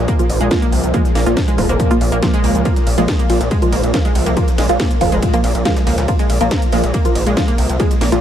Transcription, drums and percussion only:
0.08 kick, closed hi-hat
0.19 closed hi-hat
0.30 closed hi-hat, open hi-hat
0.41 closed hi-hat
0.51 kick, snare, closed hi-hat
0.62 closed hi-hat
0.72 closed hi-hat, open hi-hat
0.84 closed hi-hat
0.94 kick, closed hi-hat
1.05 snare, closed hi-hat
1.15 snare, closed hi-hat, open hi-hat
1.26 snare, closed hi-hat
1.37 kick, snare, closed hi-hat, open hi-hat
1.48 closed hi-hat
1.58 kick, closed hi-hat, open hi-hat
1.69 closed hi-hat
1.80 kick, closed hi-hat
1.91 closed hi-hat
2.01 closed hi-hat, open hi-hat
2.12 closed hi-hat
2.22 kick, snare, closed hi-hat
2.34 closed hi-hat
2.44 closed hi-hat, open hi-hat
2.55 closed hi-hat
2.65 kick, closed hi-hat, ride
2.76 snare, closed hi-hat, ride
2.87 closed hi-hat, open hi-hat, ride
2.98 closed hi-hat, ride
3.08 kick, snare, closed hi-hat, ride
3.19 closed hi-hat, ride
3.30 closed hi-hat, open hi-hat, ride
3.41 snare, closed hi-hat, ride
3.51 kick, closed hi-hat, ride
3.62 closed hi-hat, ride
3.72 closed hi-hat, open hi-hat, ride
3.84 closed hi-hat, ride
3.94 kick, snare, closed hi-hat, ride
4.05 closed hi-hat, ride
4.15 closed hi-hat, open hi-hat, ride
4.26 closed hi-hat, ride
4.37 kick, closed hi-hat, ride
4.48 snare, closed hi-hat, ride
4.58 snare, closed hi-hat, open hi-hat, ride
4.69 snare, closed hi-hat, ride
4.80 kick, snare, closed hi-hat, open hi-hat, ride
4.91 closed hi-hat, ride
5.01 kick, closed hi-hat, open hi-hat, ride
5.12 closed hi-hat, ride
5.22 kick, closed hi-hat, ride
5.34 closed hi-hat, ride
5.44 closed hi-hat, open hi-hat, ride
5.55 closed hi-hat, ride
5.65 kick, snare, closed hi-hat, ride
5.76 snare, closed hi-hat, ride
5.87 snare, closed hi-hat, open hi-hat, ride
5.98 snare, closed hi-hat, ride
6.08 kick, closed hi-hat, ride
6.19 snare, closed hi-hat, ride
6.30 closed hi-hat, open hi-hat, ride
6.41 closed hi-hat, ride
6.51 kick, snare, closed hi-hat, ride
6.62 closed hi-hat, ride
6.72 closed hi-hat, open hi-hat, ride
6.84 snare, closed hi-hat, ride
6.94 kick, closed hi-hat, ride
7.05 closed hi-hat, ride
7.15 closed hi-hat, open hi-hat, ride
7.27 closed hi-hat, ride
7.37 kick, snare, closed hi-hat, ride
7.48 closed hi-hat, ride
7.58 closed hi-hat, open hi-hat, ride
7.69 closed hi-hat, ride
7.80 kick, closed hi-hat, ride
7.91 snare, closed hi-hat, ride
8.01 snare, closed hi-hat, open hi-hat, ride
8.12 snare, closed hi-hat, ride

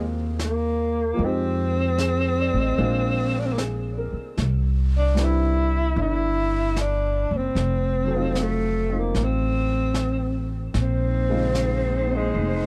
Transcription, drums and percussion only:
0.39 snare, hi-hat pedal
1.20 brush sweep
1.98 snare, hi-hat pedal
2.79 brush sweep
3.58 snare, hi-hat pedal
4.37 brush sweep, snare
5.17 snare, hi-hat pedal
5.96 brush sweep
6.77 snare, hi-hat pedal
7.56 brush sweep, snare
8.35 snare, hi-hat pedal
9.15 brush sweep, snare
9.94 snare, hi-hat pedal
10.74 brush sweep, snare
11.55 snare, hi-hat pedal
12.34 brush sweep

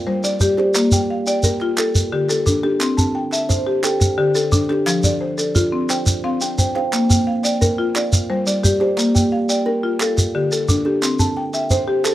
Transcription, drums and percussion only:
0.24 shekere
0.40 shekere
0.58 clap
0.75 clap, shekere
0.92 shekere
1.27 shekere
1.43 shekere
1.61 clap
1.77 clap, shekere
1.95 shekere
2.29 clap, shekere
2.47 shekere
2.81 clap, shekere
2.98 shekere
3.32 clap, shekere
3.50 shekere
3.84 clap, shekere
4.01 clap, shekere
4.35 shekere
4.52 shekere
4.70 clap
4.87 clap, shekere
5.04 shekere
5.38 clap, shekere
5.56 shekere
5.90 clap, shekere
6.07 clap, shekere
6.41 shekere
6.59 shekere
6.76 clap
6.93 clap, shekere
7.10 shekere
7.44 clap, shekere
7.62 shekere
7.96 clap, shekere
8.13 clap, shekere
8.47 shekere
8.64 shekere
8.81 clap
8.98 clap, shekere
9.16 shekere
9.49 shekere
10.00 clap, shekere
10.17 clap, shekere
10.52 shekere
10.69 shekere
11.03 clap, shekere
11.20 shekere
11.54 clap, shekere
11.70 shekere
12.05 clap, shekere

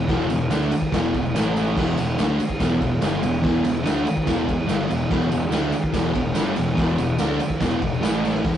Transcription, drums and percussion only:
0.08 kick, snare, ride
0.20 tambourine
0.30 ride, tambourine
0.41 tambourine
0.50 snare, ride, tambourine
0.71 ride, tambourine
0.82 kick, tambourine
0.93 kick, snare, ride, tambourine
1.05 tambourine
1.13 kick, ride, tambourine
1.25 tambourine
1.35 snare, ride, tambourine
1.56 ride, tambourine
1.67 tambourine
1.77 kick, snare, crash
1.87 tambourine
1.98 ride, tambourine
2.09 tambourine
2.19 snare, ride, tambourine
2.40 ride, tambourine
2.50 kick
2.60 kick, snare, ride, tambourine
2.81 kick, ride, tambourine
3.02 snare, ride, tambourine
3.23 ride, tambourine
3.34 tambourine
3.44 kick, snare, ride
3.54 tambourine
3.64 ride, tambourine
3.76 tambourine
3.85 snare, ride, tambourine
4.07 ride, tambourine
4.17 kick
4.27 kick, snare, ride, tambourine
4.48 kick, ride, tambourine
4.69 snare, ride, tambourine
4.90 ride, tambourine
5.01 tambourine
5.11 kick, snare, ride
5.22 tambourine
5.32 ride, tambourine
5.43 tambourine
5.52 snare, ride, tambourine
5.63 tambourine
5.72 ride, tambourine
5.84 kick
5.94 kick, snare, ride, tambourine
6.14 kick, ride, tambourine
6.35 snare, ride, tambourine
6.56 ride, tambourine
6.67 tambourine
6.77 kick, snare, ride, tambourine
6.89 tambourine
6.98 ride, tambourine
7.09 tambourine
7.18 snare, ride, tambourine
7.40 ride, tambourine
7.50 kick, tambourine
7.60 kick, snare, ride, tambourine
7.72 tambourine
7.82 kick, ride
7.94 tambourine
8.03 snare, ride, tambourine
8.15 tambourine
8.25 snare, tambourine
8.34 snare
8.44 kick, snare, ride, tambourine

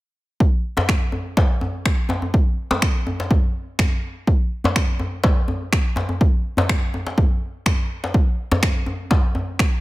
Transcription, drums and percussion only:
0.40 kick
0.77 djembe slap, djembe tone, djembe bass
0.89 finger snap, kick
1.12 djembe tone
1.37 kick, djembe slap
1.61 djembe tone
1.85 finger snap, kick
2.09 djembe slap, djembe tone
2.22 djembe tone
2.34 kick
2.71 djembe slap, djembe tone, djembe bass
2.82 finger snap, kick
3.07 djembe tone
3.20 djembe slap
3.31 kick, djembe tone
3.79 finger snap, kick, djembe tone
4.27 kick
4.64 djembe slap, djembe tone, djembe bass
4.76 finger snap, kick
4.99 djembe tone
5.24 kick, djembe slap
5.48 djembe tone
5.73 finger snap, kick
5.96 djembe slap, djembe tone
6.09 djembe tone
6.21 kick
6.57 djembe slap, djembe tone, djembe bass
6.69 finger snap, kick
6.94 djembe tone
7.07 djembe slap
7.18 kick, djembe tone
7.66 finger snap, kick, djembe tone
8.04 djembe slap
8.14 kick
8.51 djembe slap, djembe tone, djembe bass
8.63 finger snap, kick
8.86 djembe tone
9.11 kick, djembe slap
9.35 djembe tone
9.59 finger snap, kick

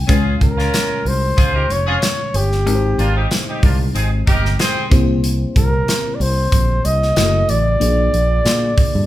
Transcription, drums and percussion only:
0.09 kick, closed hi-hat
0.41 kick, closed hi-hat
0.59 snare
0.74 snare, closed hi-hat
1.06 open hi-hat
1.38 kick, closed hi-hat
1.70 closed hi-hat
2.02 snare, closed hi-hat
2.34 closed hi-hat
2.52 snare
2.67 closed hi-hat
2.99 closed hi-hat
3.31 snare, closed hi-hat
3.63 kick, open hi-hat
3.96 closed hi-hat
4.27 kick, closed hi-hat
4.45 snare
4.59 snare, closed hi-hat
4.92 kick, closed hi-hat
5.24 closed hi-hat
5.56 kick, closed hi-hat
5.88 snare, closed hi-hat
6.21 open hi-hat
6.52 kick, closed hi-hat
6.85 closed hi-hat
7.03 snare
7.16 snare, closed hi-hat
7.49 closed hi-hat
7.81 closed hi-hat
8.14 closed hi-hat
8.46 snare, closed hi-hat
8.78 kick, open hi-hat

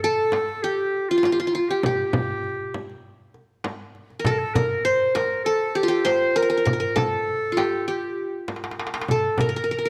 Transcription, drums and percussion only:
0.04 darbuka ka
0.32 darbuka tek, frame drum
0.49 darbuka ka
0.94 darbuka ka
1.23 darbuka tek, frame drum
1.54 darbuka ka
1.69 darbuka ka
1.83 frame drum, darbuka dum
2.13 frame drum, darbuka dum
2.44 darbuka ka
2.74 frame drum
2.89 darbuka ka
3.34 darbuka ka
3.64 darbuka tek, frame drum
3.95 darbuka ka
4.10 darbuka ka
4.25 frame drum, darbuka dum
4.55 frame drum, darbuka dum
4.86 darbuka ka
5.16 darbuka tek, frame drum
5.31 darbuka ka
5.76 darbuka ka
6.06 darbuka tek, frame drum
6.37 darbuka ka
6.52 darbuka ka
6.66 frame drum, darbuka dum
6.96 frame drum, darbuka dum
7.12 darbuka ka
7.27 darbuka ka
7.57 darbuka tek, frame drum
7.73 darbuka ka
8.48 darbuka tek, frame drum
8.56 darbuka ka
8.64 darbuka tek
8.71 darbuka ka
8.79 darbuka tek
8.87 darbuka ka
8.94 darbuka tek
9.02 darbuka ka
9.08 frame drum, darbuka dum
9.38 frame drum, darbuka dum
9.70 darbuka ka

